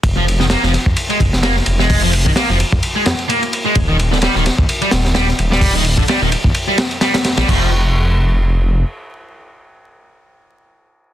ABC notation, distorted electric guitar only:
X:1
M:4/4
L:1/16
Q:"Swing 16ths" 1/4=129
K:Fm
V:1 name="Distorted electric guitar" clef=bass
z F, z E, B, F, z3 A, z2 B, z2 A,- | A, F, z E, B, F, z3 A, z2 B, z2 A, | z E, z =D, G, E, z3 G, z2 G, z2 G,- | G, E, z =D, G, E, z3 G, z2 G, z2 G, |
F,2 z12 z2 | z16 |]